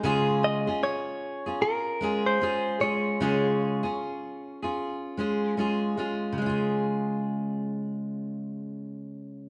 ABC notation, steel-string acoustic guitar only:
X:1
M:4/4
L:1/16
Q:"Swing 16ths" 1/4=76
K:Db
V:1 name="Steel-string acoustic guitar"
[D,A,DFA]3 [DFA]4 [DFA]3 [A,DFA]2 [A,DFA]2 [A,DFA]2 | [D,A,DFA]3 [DFA]4 [DFA]3 [A,DFA]2 [A,DFA]2 [A,DFA]2 | [D,A,DFA]16 |]